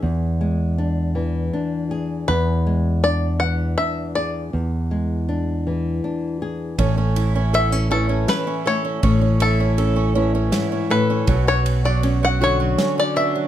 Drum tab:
RD |------|------|------|xxx-x-|
SD |------|------|------|----o-|
BD |------|------|------|o-----|

RD |xxx-x-|xxx-x-|
SD |----o-|----o-|
BD |o-----|o-----|